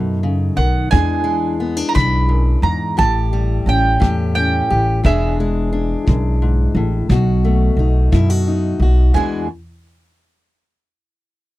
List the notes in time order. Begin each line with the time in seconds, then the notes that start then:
Already playing: F#2 B2 A3 D#4 F#4
0.23 C#3
0.56 B1 D#3 F#5
0.91 E2 E3 G#3 D4 G#4 G#5, kick
1.24 G#3
1.60 B3
1.77 D4
1.89 A#5
1.94 B1 E2 B5, kick
2.29 F#2
2.62 E2 G#2 A#5
2.97 A1 A2 G4 A5, kick
3.33 G3
3.66 A1 C#4 G5
4.00 E2 A2 G4, kick
4.35 C#4 G5
4.70 A1 G4
5.04 E1 E2 E3 G#3 D4 G#4 E5, kick
5.40 G#3
5.73 D4
6.07 B1 F#2, kick
6.42 G#2
6.75 A1 A2
7.09 B1 B2 F#4, kick
7.44 A3
7.77 B1 D#4
8.12 F#2 B2 E4, kick
8.30 F#4
8.48 D#4
8.80 B1 F#4
9.14 E2 E3 G#3 D4 F#4 G#5